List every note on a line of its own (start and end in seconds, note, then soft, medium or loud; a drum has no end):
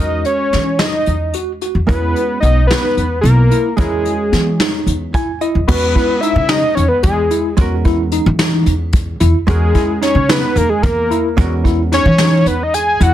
0.00 0.23 E2 medium
0.00 1.84 G#3 soft
0.00 1.85 C#4 soft
0.00 0.32 F#4 medium
0.00 1.85 F#4 soft
0.00 1.86 A#4 medium
0.00 0.25 D#5 medium
0.25 0.81 C#5 medium
0.25 closed hi-hat soft
0.53 0.77 E3 medium
0.53 0.70 C#4 medium
0.53 snare soft
0.53 closed hi-hat soft
0.79 1.14 D#4 medium
0.79 1.34 D#5 medium
0.79 snare medium
0.79 closed hi-hat medium
1.06 1.31 E2 medium
1.06 closed hi-hat medium
1.34 1.51 F#4 medium
1.34 closed hi-hat medium
1.61 1.79 F#4 medium
1.61 closed hi-hat soft
1.75 1.87 E2 medium
1.87 2.13 E2 medium
1.87 3.74 G#3 soft
1.87 3.74 C#4 soft
1.87 2.23 E4 medium
1.87 3.75 F#4 medium
1.87 3.76 G#4 medium
1.87 2.38 B4 medium
1.87 kick medium
1.87 closed hi-hat medium
2.16 closed hi-hat soft
2.40 2.67 B1 medium
2.40 2.60 B3 medium
2.40 2.67 D#5 medium
2.40 closed hi-hat medium
2.67 3.04 D#4 medium
2.67 3.19 B4 loud
2.67 snare loud
2.67 closed hi-hat medium
2.97 3.21 E2 medium
2.97 closed hi-hat soft
3.21 3.48 B1 medium
3.21 3.41 E4 medium
3.21 3.73 A#4 medium
3.21 closed hi-hat medium
3.51 3.68 E4 medium
3.51 closed hi-hat medium
3.76 4.03 E2 medium
3.76 5.64 G#3 medium
3.76 5.64 C#4 medium
3.76 4.12 E4 medium
3.76 5.65 F#4 soft
3.76 5.09 G#4 medium
3.76 kick loud
3.76 closed hi-hat medium
3.80 5.66 A#4 medium
4.05 closed hi-hat soft
4.32 4.57 E3 medium
4.32 4.49 B3 medium
4.32 snare soft
4.32 closed hi-hat soft
4.60 4.94 D#4 medium
4.60 snare loud
4.60 closed hi-hat medium
4.86 5.11 E2 medium
4.86 closed hi-hat medium
5.14 5.31 E4 medium
5.14 5.40 G#5 medium
5.14 kick medium
5.14 closed hi-hat medium
5.41 5.58 E4 medium
5.41 5.67 D#5 medium
5.41 closed hi-hat medium
5.55 5.67 E2 medium
5.67 5.93 E2 medium
5.67 7.54 G#3 medium
5.67 7.55 C#4 medium
5.67 5.85 F#4 medium
5.67 7.56 F#4 medium
5.67 6.22 B4 medium
5.67 kick loud
5.67 crash medium
5.72 7.56 B4 medium
5.95 6.12 E4 medium
5.95 kick medium
5.95 closed hi-hat medium
6.21 6.40 D#4 medium
6.21 6.51 E5 medium
6.21 closed hi-hat medium
6.36 6.60 C#3 medium
6.49 6.84 D#4 medium
6.49 6.76 D#5 loud
6.49 snare medium
6.49 closed hi-hat medium
6.75 6.89 E2 medium
6.75 6.90 C#5 loud
6.75 closed hi-hat medium
6.88 7.02 B4 medium
7.03 7.28 E2 loud
7.03 7.54 G#4 medium
7.03 kick loud
7.03 closed hi-hat medium
7.31 7.48 E4 medium
7.31 closed hi-hat medium
7.57 8.18 E2 medium
7.57 9.44 G#3 medium
7.57 9.45 C#4 soft
7.57 7.75 F#4 medium
7.57 9.45 F#4 medium
7.57 kick loud
7.57 closed hi-hat medium
7.61 9.46 A#4 medium
7.85 8.02 E4 medium
7.85 kick medium
7.85 closed hi-hat medium
8.12 8.29 D#4 medium
8.12 closed hi-hat medium
8.26 8.62 E3 medium
8.39 8.73 D#4 medium
8.39 snare loud
8.39 closed hi-hat medium
8.66 9.15 E2 medium
8.66 closed hi-hat medium
8.93 kick loud
8.93 closed hi-hat medium
9.20 9.33 E2 medium
9.20 9.38 E4 medium
9.20 closed hi-hat medium
9.47 9.72 E2 loud
9.47 11.33 G#3 medium
9.47 11.34 C#4 medium
9.47 9.65 F#4 medium
9.47 11.35 F#4 medium
9.47 9.99 G#4 medium
9.47 11.35 A#4 medium
9.47 kick loud
9.47 closed hi-hat medium
9.75 9.92 E4 medium
9.75 kick medium
9.75 closed hi-hat medium
10.02 10.19 D#4 medium
10.02 10.32 C#5 medium
10.02 snare soft
10.02 closed hi-hat medium
10.15 10.39 C#3 medium
10.29 10.63 D#4 medium
10.29 10.59 B4 loud
10.29 snare loud
10.29 closed hi-hat medium
10.56 10.68 E2 medium
10.56 10.71 A#4 loud
10.56 closed hi-hat medium
10.69 10.84 G#4 medium
10.82 11.08 E2 loud
10.82 11.37 A#4 medium
10.82 kick loud
10.82 closed hi-hat medium
11.11 11.28 E4 medium
11.11 closed hi-hat medium
11.37 11.98 E2 loud
11.37 13.14 G#3 medium
11.37 13.14 C#4 medium
11.37 11.54 F#4 medium
11.37 13.14 F#4 medium
11.37 13.14 A#4 medium
11.37 kick loud
11.37 closed hi-hat medium
11.64 11.81 E4 medium
11.64 kick medium
11.64 closed hi-hat medium
11.92 12.09 D#4 medium
11.92 12.49 C#5 loud
11.92 snare soft
11.92 closed hi-hat medium
12.06 12.42 E3 loud
12.18 12.53 D#4 medium
12.18 snare loud
12.18 closed hi-hat medium
12.46 12.94 E2 medium
12.46 12.65 B4 medium
12.46 closed hi-hat medium
12.63 12.76 D#5 medium
12.74 13.04 G#5 loud
12.74 closed hi-hat medium
13.00 13.13 E2 loud
13.00 13.14 E4 medium
13.00 13.14 F#5 loud
13.00 closed hi-hat medium